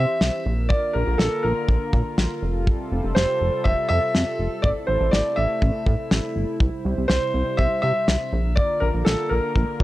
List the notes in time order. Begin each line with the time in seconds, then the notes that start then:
Already playing: E3 C4 G4 C5 E5
0.21 C2, snare
0.46 A#1 D3 A#3 F4 A#4
0.69 D5, kick
0.93 A#1 A#4
1.07 A#1
1.18 A#1 A4, snare
1.43 A#1 A#4
1.69 A#1, kick
1.93 A#2, kick
2.18 A#1, snare
2.42 F1 C3 G3 A4
2.67 kick
2.92 F1
3.04 F1
3.15 F1 C5, snare
3.41 F1
3.64 F1 E5, kick
3.88 F2 E5
4.15 F2, snare
4.39 F1
4.62 A1 C3 A3 E4 D5, kick
4.87 A1 C5
5.01 A1
5.11 A1 D5, snare
5.36 A1 E5
5.62 A1, kick
5.87 A2, kick
6.11 A1, snare
6.36 G1
6.61 C2 C3 G3 C5, kick
6.85 C2
6.97 C2
7.08 C2 C5, snare
7.34 C2
7.57 C2 E5, kick
7.82 C3 E5
8.08 C2, snare
8.33 A#1 D3 A#3 F4 A#4
8.56 D5, kick
8.80 A#1 A#4
8.94 A#1
9.05 A#1 A4, snare
9.29 A#1 A#4
9.55 A#1, kick
9.80 A#2, kick